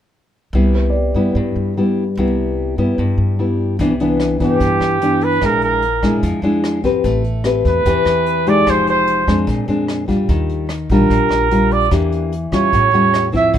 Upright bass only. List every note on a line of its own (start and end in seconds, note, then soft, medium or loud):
0.53 1.11 C2 loud
1.14 1.34 G2 medium
1.35 1.54 G2 medium
1.56 2.13 G2 medium
2.17 2.74 C2 loud
2.78 2.97 G2 medium
2.98 3.17 G2 medium
3.18 3.75 G2 medium
3.79 4.36 C2 loud
4.40 4.59 G2 medium
4.60 4.70 G2 medium
4.80 5.38 G2 medium
5.41 5.99 A#1 medium
6.03 6.21 F2 medium
6.23 6.32 F2 medium
6.42 7.00 F2 medium
7.04 7.61 A1 medium
7.65 7.84 E2 medium
7.86 7.95 E2 medium
8.05 8.62 E2 medium
8.67 9.24 F1 medium
9.27 9.46 F2 medium
9.48 9.57 A#1 medium
9.68 10.25 F2 medium
10.29 10.86 D#2 loud
10.90 11.09 A#1 medium
11.10 11.20 A#1 medium
11.29 11.87 A#1 medium
11.91 12.48 E2 medium
12.52 12.71 E2 medium
12.73 12.82 A1 medium
12.92 13.49 E2 medium
13.54 13.59 D2 medium